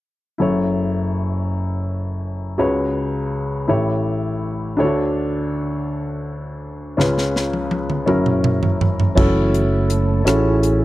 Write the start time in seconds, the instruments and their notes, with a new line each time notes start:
0.38 upright piano F#1 F#2 E4 F#4 A4 C#5
2.58 upright piano C#2 C#3 F#4 G#4 B4 C#5
3.67 upright piano A1 A2 E4 G4 A4 C#5
4.77 upright piano D2 D3 D4 E4 A4 C#5
4.84 upright piano F#4
6.97 upright piano C#2 C#3 C#4 F4 G#4 B4, snare
7.18 snare
7.36 snare
7.53 high tom
7.71 high tom
7.90 mid tom
8.06 upright piano F#1 F#2 C#4 E4 F#4 A#4, mid tom
8.26 mid tom
8.44 mid tom
8.63 floor tom
8.81 floor tom
9.00 floor tom
9.15 fingered electric bass F#1, tonewheel organ E3 F#3 A3 C#4 E4, upright piano C#4 E4 F#4 A4, kick, crash
9.53 tonewheel organ F#4, closed hi-hat
9.88 tonewheel organ A4, closed hi-hat
10.25 fingered electric bass A1, upright piano C#4 E4 F#4 A4, tonewheel organ C#4 E4 G#4, cross-stick, closed hi-hat
10.63 closed hi-hat